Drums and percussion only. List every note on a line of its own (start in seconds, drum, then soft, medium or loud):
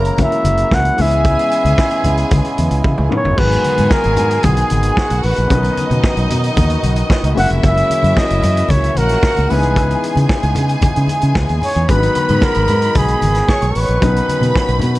0.05 closed hi-hat soft
0.18 kick loud
0.18 closed hi-hat medium
0.18 muted conga soft
0.18 high conga medium
0.18 low conga medium
0.32 closed hi-hat soft
0.45 closed hi-hat medium
0.45 high conga medium
0.57 closed hi-hat soft
0.71 kick loud
0.71 snare loud
0.85 closed hi-hat medium
0.98 open hi-hat medium
0.98 low conga medium
1.11 closed hi-hat soft
1.25 kick loud
1.25 closed hi-hat medium
1.25 muted conga soft
1.39 closed hi-hat soft
1.51 closed hi-hat medium
1.65 closed hi-hat soft
1.65 high conga medium
1.78 kick loud
1.78 snare loud
1.91 closed hi-hat soft
2.04 closed hi-hat medium
2.04 low conga medium
2.17 closed hi-hat soft
2.31 kick loud
2.31 closed hi-hat medium
2.31 muted conga soft
2.31 high conga medium
2.31 low conga medium
2.44 closed hi-hat soft
2.44 muted conga soft
2.58 closed hi-hat medium
2.58 high conga medium
2.71 closed hi-hat soft
2.84 kick loud
2.84 high tom medium
2.98 mid tom medium
2.98 muted conga soft
3.12 mid tom medium
3.25 floor tom medium
3.38 kick loud
3.38 crash loud
3.52 closed hi-hat medium
3.64 closed hi-hat medium
3.64 high conga medium
3.78 closed hi-hat medium
3.78 high conga medium
3.90 kick loud
3.90 snare loud
4.03 closed hi-hat soft
4.03 muted conga soft
4.17 closed hi-hat medium
4.17 low conga loud
4.31 closed hi-hat soft
4.43 kick loud
4.43 closed hi-hat medium
4.43 muted conga soft
4.43 high conga medium
4.43 low conga medium
4.57 closed hi-hat medium
4.57 muted conga soft
4.70 closed hi-hat medium
4.70 high conga medium
4.83 closed hi-hat medium
4.97 kick loud
4.97 snare loud
5.10 closed hi-hat medium
5.10 muted conga soft
5.23 open hi-hat medium
5.36 closed hi-hat soft
5.50 kick loud
5.50 closed hi-hat medium
5.50 muted conga soft
5.63 closed hi-hat soft
5.63 muted conga soft
5.77 closed hi-hat medium
5.77 high conga medium
5.91 closed hi-hat soft
5.91 high conga medium
6.04 kick loud
6.04 snare loud
6.17 closed hi-hat medium
6.17 muted conga soft
6.30 closed hi-hat medium
6.30 low conga medium
6.44 closed hi-hat medium
6.57 kick loud
6.57 closed hi-hat medium
6.57 high conga medium
6.57 low conga medium
6.70 closed hi-hat medium
6.83 closed hi-hat medium
6.83 high conga medium
6.96 closed hi-hat medium
7.10 kick loud
7.10 snare loud
7.24 closed hi-hat medium
7.37 open hi-hat medium
7.50 closed hi-hat soft
7.63 kick loud
7.63 closed hi-hat medium
7.63 muted conga soft
7.77 closed hi-hat medium
7.90 closed hi-hat medium
7.90 high conga medium
8.03 closed hi-hat soft
8.03 high conga medium
8.16 kick loud
8.16 snare loud
8.16 muted conga soft
8.30 closed hi-hat soft
8.43 closed hi-hat medium
8.43 low conga medium
8.57 closed hi-hat soft
8.69 kick loud
8.69 closed hi-hat medium
8.69 high conga medium
8.69 low conga medium
8.82 closed hi-hat medium
8.82 muted conga soft
8.95 closed hi-hat medium
8.95 high conga medium
9.09 snare soft
9.09 closed hi-hat medium
9.21 kick loud
9.21 snare loud
9.21 muted conga soft
9.35 closed hi-hat soft
9.35 muted conga soft
9.50 open hi-hat medium
9.63 closed hi-hat soft
9.76 kick loud
9.76 closed hi-hat medium
9.76 muted conga soft
9.91 closed hi-hat soft
10.04 closed hi-hat medium
10.15 closed hi-hat soft
10.15 high conga medium
10.29 kick loud
10.29 snare loud
10.43 closed hi-hat soft
10.55 closed hi-hat medium
10.55 low conga loud
10.69 closed hi-hat medium
10.81 kick loud
10.81 closed hi-hat medium
10.81 high conga medium
10.81 low conga medium
10.96 closed hi-hat soft
10.96 muted conga soft
11.07 closed hi-hat medium
11.07 high conga medium
11.21 closed hi-hat soft
11.35 kick loud
11.35 snare loud
11.47 closed hi-hat medium
11.47 muted conga soft
11.62 open hi-hat medium
11.62 low conga medium
11.76 closed hi-hat soft
11.89 kick loud
11.89 closed hi-hat medium
11.89 muted conga soft
12.03 closed hi-hat medium
12.15 closed hi-hat medium
12.15 high conga medium
12.29 closed hi-hat medium
12.29 high conga medium
12.41 kick loud
12.41 snare loud
12.54 closed hi-hat medium
12.68 closed hi-hat medium
12.68 low conga medium
12.82 closed hi-hat soft
12.95 kick loud
12.95 closed hi-hat medium
12.95 high conga medium
12.95 low conga medium
13.08 closed hi-hat soft
13.08 muted conga soft
13.21 closed hi-hat medium
13.21 high conga medium
13.35 snare soft
13.35 closed hi-hat soft
13.48 kick loud
13.48 snare loud
13.48 muted conga soft
13.61 closed hi-hat medium
13.61 muted conga soft
13.75 open hi-hat medium
13.88 closed hi-hat soft
14.02 kick loud
14.02 closed hi-hat medium
14.02 muted conga soft
14.16 closed hi-hat soft
14.29 closed hi-hat medium
14.29 high conga medium
14.41 closed hi-hat medium
14.41 high conga medium
14.55 kick loud
14.55 snare loud
14.68 closed hi-hat soft
14.68 muted conga soft
14.79 closed hi-hat medium
14.79 low conga medium
14.95 closed hi-hat soft